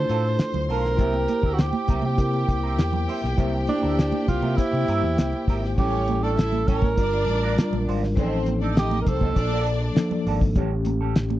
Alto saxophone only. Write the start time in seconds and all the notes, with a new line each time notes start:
Already playing: C5
0.72 A#4
1.54 F#4
1.61 G4
2.06 G4
3.69 D4
4.28 F4
4.58 E4
5.79 G4
6.23 A4
6.68 A#4
8.79 G4
9.02 A#4
9.09 A4